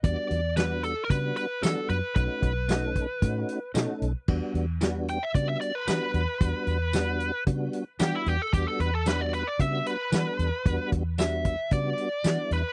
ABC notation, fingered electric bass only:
X:1
M:4/4
L:1/16
Q:1/4=113
K:Edor
V:1 name="Fingered electric bass" clef=bass
E,, z E,,6 C,2 z2 E, z F,, z | B,,, z B,,,6 A,,2 z2 B,, z B,,, z | E,, z E,,6 C,2 z2 E, z E,, z | E,, z E,,6 C,2 z2 E, z E,, z |
E,, z E,,6 C,2 z2 E, z E,, z | E,, z E,,6 C,2 z2 E, z E,, z |]